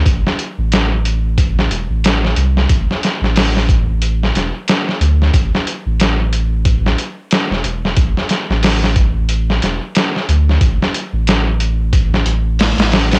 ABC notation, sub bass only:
X:1
M:4/4
L:1/16
Q:"Swing 16ths" 1/4=91
K:Am
V:1 name="Sub bass" clef=bass
A,,, z2 A,,,6- A,,, E,,, A,,,3 C,,2 | A,,, z2 A,,,6- A,,, E,,, z3 D,,2 | A,,, z2 A,,,6- A,,, z3 E,,, E,,,2 | A,,, z2 A,,,6- A,,, E,,, z3 D,,2 |
A,,, z2 A,,,6- A,,, A,,,3 A,,,3 |]